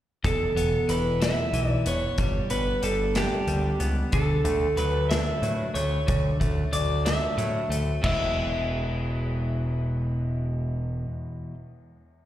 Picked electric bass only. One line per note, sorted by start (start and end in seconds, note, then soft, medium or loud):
0.24 0.46 E1 medium
0.55 0.77 E1 medium
0.88 1.32 E1 medium
1.52 1.75 B1 medium
1.85 2.07 E1 medium
2.18 2.40 G1 medium
2.50 2.72 G1 medium
2.82 3.26 G1 medium
3.47 3.69 D2 medium
3.80 4.02 C#2 medium
4.13 4.35 D2 medium
4.44 4.67 D2 medium
4.77 5.21 D2 medium
5.42 5.64 A2 medium
5.75 5.97 D2 medium
6.08 6.30 D2 medium
6.41 6.62 D2 medium
6.73 7.16 D2 medium
7.38 7.60 A2 medium
7.69 7.92 D2 medium
8.04 11.04 E1 medium